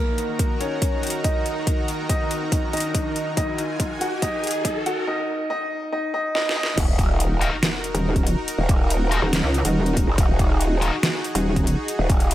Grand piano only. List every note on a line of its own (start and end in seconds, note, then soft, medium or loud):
0.00 0.52 A#3 medium
0.00 0.52 A#4 medium
0.61 1.16 C#4 medium
0.61 1.16 C#5 medium
1.24 2.01 D#4 medium
1.24 2.01 D#5 medium
2.10 2.65 D#4 medium
2.10 2.65 D#5 medium
2.73 3.29 D#4 medium
2.73 3.29 D#5 medium
3.37 3.92 D#4 medium
3.37 3.92 D#5 medium
4.01 4.21 F#4 medium
4.01 4.21 F#5 medium
4.22 4.78 D#4 medium
4.22 4.78 D#5 medium
4.86 5.06 F#4 medium
4.86 5.06 F#5 medium
5.07 5.48 D#4 medium
5.07 5.48 D#5 medium
5.50 5.91 D#4 medium
5.50 5.91 D#5 loud
5.92 6.12 D#4 medium
5.92 6.12 D#5 loud
6.14 6.33 D#4 medium
6.14 6.33 D#5 loud
6.35 6.55 D#4 medium
6.35 6.55 D#5 loud
6.56 6.76 D#4 medium
6.56 6.76 D#5 loud